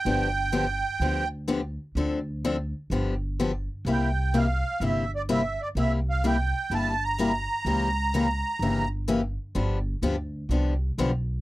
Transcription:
X:1
M:4/4
L:1/8
Q:"Swing" 1/4=126
K:C
V:1 name="Accordion"
g4- g z3 | z8 | g2 f2 e d e d | e f g2 a _b3- |
_b4- b z3 | z8 |]
V:2 name="Steel-string acoustic guitar"
[D,F,B,DG] z [D,F,B,DG] z [D,F,B,DG] z [D,F,B,DG] z | [D,F,CDA] z [D,F,CDA] z [D,F,B,DG] z [D,F,B,DG] z | [C,G,_B,EG] z [C,G,B,EG] z [C,G,B,EG] z [C,G,B,EG] z | [C,G,_B,EG] z [C,G,B,EG] z [C,G,B,EG] z [C,G,B,EG] z |
[^C,E,^A,^CG] z [C,E,A,CG] z [C,E,A,CG] z [C,E,A,CG] z | [D,F,B,DG] z [D,F,B,DG] z [D,F,B,DG] z [D,F,B,DG] z |]
V:3 name="Upright bass" clef=bass
G,,,4 D,,4 | D,,4 G,,,4 | C,,4 G,,,4 | C,,4 G,,,4 |
^C,,4 G,,,4 | G,,,2 D,,2 C,,2 B,,,2 |]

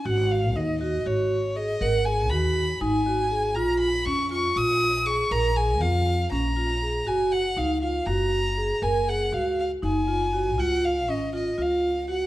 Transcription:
X:1
M:7/8
L:1/8
Q:1/4=120
K:G#dor
V:1 name="Violin"
f e d d c2 d | f g b2 g3 | a b c' c' d'2 c' | a g e2 a3 |
g f e e a3 | g f e e g3 | f e d d e2 f |]
V:2 name="Vibraphone"
F2 D F F2 G | A G F2 D F G | E2 C E E2 G | A G E2 C E G |
F2 D E F2 G | A G F2 D E F | E2 C E E2 F |]
V:3 name="Upright bass" clef=bass
G,,,2 D,,2 G,,,3 | G,,,2 D,,2 G,,,3 | A,,,2 E,,2 A,,,3 | A,,,2 E,,2 A,,,3 |
F,,,2 C,,2 F,,,3 | F,,,2 C,,2 F,,,3 | C,,2 G,,,2 C,,3 |]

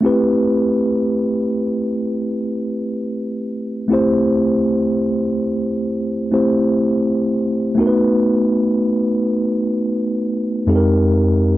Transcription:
X:1
M:4/4
L:1/8
Q:"Swing 16ths" 1/4=62
K:Ador
V:1 name="Tine electric piano"
[A,CEGB]8 | [A,CEGc]4- [A,CEGc] [A,CEGc]3 | [A,B,^DF_B=B]6 [=F,,_A,C_EG=A_B]2 |]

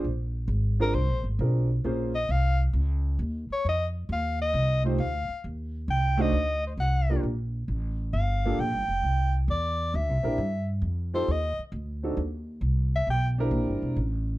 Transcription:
X:1
M:4/4
L:1/8
Q:"Swing" 1/4=134
K:Fmix
V:1 name="Soprano saxophone"
z3 B c z3 | z e f z4 _d | e z f e2 c f2 | z2 g e2 c ^f2 |
z4 f2 g2- | g z d2 =e3 z | z c e z4 z | z =e g z4 z |]
V:2 name="Grand piano"
z3 [CDF_AB] z2 [CDFAB] z | [B,_DF_Ac] z6 z | z4 z [A,EFGc] z2 | z3 [A,DE_Gc] z3 [B,DF=GB] |
z4 z [B,DFGA] z2 | z4 z [CD=EGB] z2 | z [CEFGA] z3 [CDE^FA] z2 | z3 [CD=EGB]3 z2 |]
V:3 name="Upright bass" clef=bass
B,,,2 _A,,,2 (3C,, B,,, A,,, =B,,,2 | B,,,2 C,,2 _D,,2 E,, z | F,,2 E,,2 C,,2 D,, z | E,,2 C,,2 D,,2 C,,2 |
B,,,2 A,,,2 G,,,2 (3B,,, G,,, F,,, | C,,2 =E,,2 (3D,, C,, B,,, G,,2 | F,,2 E,, z D,,2 E,,2 | C,,2 =B,,,2 (3_B,,, G,,, =E,,, A,,,2 |]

